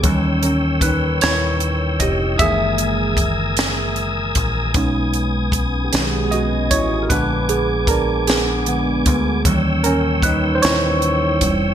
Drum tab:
HH |xxxxxx|xxxxxx|xxxxxx|xxxxxx|
SD |---o--|---o--|---o--|---o--|
BD |o-o--o|o-o--o|o-o--o|o-o--o|

HH |xxxxxx|
SD |---o--|
BD |o-o--o|